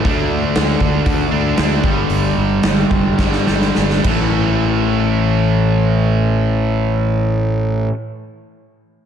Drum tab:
CC |----------------|--------------x-|----------------|----------------|
HH |o---o---o---o---|o---o-----------|----------------|----------------|
SD |----o-------o---|----o---oooooo--|----------------|----------------|
BD |o-----o-o-----o-|------o-o-----o-|----------------|----------------|